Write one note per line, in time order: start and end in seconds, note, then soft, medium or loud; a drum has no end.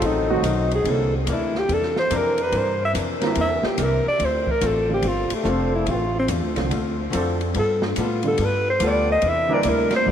0.00 0.42 A1 medium
0.00 0.31 F#2 soft
0.00 0.31 D#3 medium
0.00 0.27 F#3 loud
0.00 0.31 A3 medium
0.00 0.27 C4 medium
0.00 0.26 D#4 medium
0.00 0.27 A4 loud
0.00 ride medium
0.04 0.32 C4 medium
0.04 0.73 D#4 medium
0.29 0.43 D#3 medium
0.29 0.83 F#3 loud
0.29 0.43 F#3 medium
0.29 0.43 A3 medium
0.29 0.83 C4 medium
0.29 0.43 C4 medium
0.29 0.83 D#4 medium
0.29 0.83 F#4 loud
0.29 0.43 F#4 medium
0.42 0.84 B1 medium
0.42 0.73 F#2 medium
0.42 0.73 D#3 medium
0.42 0.74 A3 medium
0.42 0.74 C4 medium
0.42 hi-hat pedal medium
0.42 ride medium
0.71 0.92 G#4 loud
0.71 ride medium
0.84 1.26 C2 medium
0.84 1.14 C3 soft
0.84 1.10 D3 medium
0.84 1.15 E3 soft
0.84 1.10 G3 medium
0.84 1.11 A#3 medium
0.84 1.16 A#3 medium
0.84 1.11 C4 medium
0.84 1.16 D4 medium
0.84 1.11 E4 medium
0.84 ride medium
0.91 1.16 A4 loud
1.17 1.33 C4 medium
1.26 1.68 D2 medium
1.26 1.57 C3 medium
1.26 1.57 E3 medium
1.26 1.57 A#3 medium
1.26 hi-hat pedal medium
1.26 ride medium
1.31 1.58 D4 medium
1.31 1.60 E4 medium
1.55 1.75 G4 loud
1.55 snare soft
1.68 2.10 E2 medium
1.68 1.98 C3 medium
1.68 1.98 E3 medium
1.68 1.99 A#3 medium
1.68 2.00 D4 medium
1.68 ride medium
1.73 1.98 A4 medium
1.82 snare soft
1.96 2.18 C5 loud
1.96 snare medium
2.10 2.52 F2 medium
2.10 2.40 C3 medium
2.10 2.40 E3 medium
2.10 2.75 E3 medium
2.10 2.40 A#3 medium
2.10 2.75 C4 medium
2.10 2.76 D4 medium
2.10 2.41 D4 medium
2.10 2.75 A#4 loud
2.10 hi-hat pedal medium
2.10 ride medium
2.17 2.44 A#4 loud
2.38 ride medium
2.43 2.60 B4 loud
2.52 2.93 G2 medium
2.52 2.81 C3 soft
2.52 2.82 E3 soft
2.52 2.83 A#3 medium
2.52 2.83 D4 medium
2.52 ride medium
2.58 2.83 C5 medium
2.85 2.92 E5 loud
2.93 3.35 F2 medium
2.93 3.23 C3 medium
2.93 3.24 E3 medium
2.93 3.24 A#3 medium
2.93 3.24 D4 medium
2.93 hi-hat pedal medium
2.93 ride medium
3.20 3.35 D3 medium
3.20 3.75 E3 loud
3.20 3.35 G3 medium
3.20 3.36 A#3 medium
3.20 3.75 C4 medium
3.20 3.36 C4 medium
3.20 3.75 D4 medium
3.20 3.36 E4 medium
3.20 3.75 A#4 loud
3.20 snare soft
3.20 ride medium
3.35 3.62 E2 medium
3.35 3.65 C3 soft
3.35 3.66 E3 soft
3.35 3.67 A#3 medium
3.35 3.67 D4 medium
3.35 ride medium
3.41 3.68 E5 loud
3.63 3.84 G4 medium
3.63 muted upright bass stroke soft
3.63 snare medium
3.77 4.04 C2 medium
3.77 4.07 C3 medium
3.77 4.07 E3 medium
3.77 4.07 A#3 medium
3.77 4.07 D4 medium
3.77 hi-hat pedal medium
3.77 ride medium
3.83 4.08 A#4 medium
4.08 4.26 D5 loud
4.19 4.61 D2 medium
4.19 4.48 D3 soft
4.19 4.49 A3 soft
4.19 4.50 C4 medium
4.19 4.50 F4 medium
4.19 ride medium
4.25 4.53 C5 medium
4.47 kick medium
4.51 4.69 A#4 loud
4.61 5.03 A1 medium
4.61 4.91 D3 medium
4.61 4.91 A3 medium
4.61 4.91 C4 medium
4.61 4.92 F4 medium
4.61 hi-hat pedal medium
4.61 ride medium
4.67 4.92 A4 medium
4.88 5.02 D3 medium
4.88 5.02 F3 medium
4.88 5.03 A3 medium
4.88 5.03 C4 medium
4.88 5.03 F4 medium
4.94 5.09 G4 loud
5.02 5.29 G1 medium
5.02 5.32 D3 medium
5.02 5.33 A3 medium
5.02 5.34 C4 medium
5.02 5.34 F4 medium
5.02 ride medium
5.08 5.36 F4 medium
5.30 muted upright bass stroke soft
5.30 ride medium
5.34 5.51 A3 medium
5.43 5.86 F1 medium
5.43 5.74 D3 medium
5.43 6.09 F3 medium
5.43 5.74 A3 medium
5.43 6.09 C4 medium
5.43 5.74 C4 medium
5.43 6.09 D4 medium
5.43 5.74 F4 medium
5.43 6.09 A4 loud
5.43 hi-hat pedal medium
5.50 5.74 C4 medium
5.75 5.93 E4 loud
5.86 6.28 A1 medium
5.86 6.16 D3 soft
5.86 6.17 A3 medium
5.86 6.17 C4 medium
5.86 6.18 F4 medium
5.86 ride medium
5.91 6.17 F4 loud
6.19 6.27 C4 loud
6.28 6.42 E2 medium
6.28 6.58 D3 medium
6.28 6.58 A3 medium
6.28 6.59 C4 medium
6.28 6.59 F4 medium
6.28 hi-hat pedal medium
6.28 ride medium
6.42 6.56 D2 medium
6.55 6.70 C2 medium
6.55 6.69 D3 medium
6.55 6.70 F3 medium
6.55 6.70 A3 medium
6.55 6.70 C4 medium
6.55 6.70 F4 medium
6.55 snare soft
6.55 ride medium
6.70 7.12 D2 medium
6.70 7.00 D3 medium
6.70 7.00 A3 medium
6.70 7.01 C4 medium
6.70 7.01 F4 medium
6.70 ride medium
7.10 7.54 F2 loud
7.10 7.41 D3 medium
7.10 7.55 F3 medium
7.10 7.41 A3 medium
7.10 7.42 C4 medium
7.10 7.55 C4 medium
7.10 7.55 D4 medium
7.10 7.42 F4 medium
7.10 7.55 A4 loud
7.10 hi-hat pedal medium
7.10 ride medium
7.41 ride medium
7.54 7.96 G2 loud
7.54 7.83 G3 soft
7.54 7.84 B3 medium
7.54 7.85 F4 medium
7.54 7.85 A4 medium
7.54 ride medium
7.59 7.83 A4 loud
7.82 snare medium
7.86 8.02 D4 medium
7.96 8.38 A2 loud
7.96 8.26 G3 medium
7.96 8.27 B3 medium
7.96 8.27 F4 medium
7.96 hi-hat pedal medium
7.96 ride medium
8.00 8.27 F4 medium
8.00 8.28 A4 medium
8.23 8.37 D3 medium
8.23 8.37 G3 medium
8.23 8.37 A3 medium
8.23 8.38 B3 medium
8.23 8.38 F4 medium
8.23 ride medium
8.28 8.47 A4 loud
8.38 8.80 G2 medium
8.38 8.68 G3 medium
8.38 8.68 B3 medium
8.38 8.69 F4 medium
8.38 ride medium
8.42 8.69 A4 medium
8.42 8.69 B4 loud
8.70 8.89 C5 loud
8.80 9.21 D2 loud
8.80 9.10 G3 medium
8.80 9.23 G3 loud
8.80 9.23 B3 medium
8.80 9.10 B3 medium
8.80 9.23 F4 loud
8.80 9.11 F4 medium
8.80 9.23 A4 loud
8.80 9.11 A4 medium
8.80 hi-hat pedal medium
8.80 ride medium
8.88 9.11 D5 loud
9.12 9.30 D#5 loud
9.22 9.63 E2 medium
9.22 9.51 C3 soft
9.22 9.52 A#3 medium
9.22 9.53 D4 medium
9.22 ride medium
9.26 9.53 E4 medium
9.26 9.56 E5 loud
9.48 10.03 D3 medium
9.48 9.59 E3 loud
9.48 10.03 G3 medium
9.48 10.03 A#3 medium
9.48 10.03 C4 medium
9.48 9.60 C4 medium
9.48 9.59 D4 loud
9.48 10.03 E4 medium
9.48 9.60 A#4 loud
9.54 9.71 D5 loud
9.63 10.05 D2 medium
9.63 9.93 C3 medium
9.63 9.94 A#3 medium
9.63 9.94 D4 medium
9.63 9.95 E4 medium
9.63 hi-hat pedal medium
9.63 ride medium
9.69 9.94 A#4 loud
9.91 snare medium
9.91 ride medium
9.96 10.08 C5 loud
10.05 10.12 G1 medium
10.05 10.12 D3 medium
10.05 10.12 G3 medium
10.05 10.12 A3 medium
10.05 10.12 B3 medium
10.05 10.12 F4 medium